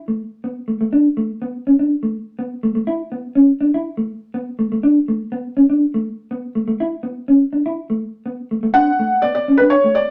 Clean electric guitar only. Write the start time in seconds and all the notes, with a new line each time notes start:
0.08 A3
0.44 B3
0.68 A3
0.81 A3
0.93 D4
1.17 A3
1.42 B3
1.67 C#4
1.79 D4
2.03 A3
2.39 B3
2.63 A3
2.75 A3
2.87 E4
3.12 B3
3.35 C#4
3.61 D4
3.74 E4
3.97 A3
4.34 B3
4.59 A3
4.72 A3
4.83 D4
5.08 A3
5.32 B3
5.57 C#4
5.70 D4
5.94 A3
6.31 B3
6.55 A3
6.68 A3
6.80 E4
7.03 B3
7.28 C#4
7.53 D4
7.66 E4
7.90 A3
8.26 B3
8.51 A3
8.63 A3
8.74 D4
8.99 A3
9.23 B3
9.48 C#4
9.60 D4
9.84 A3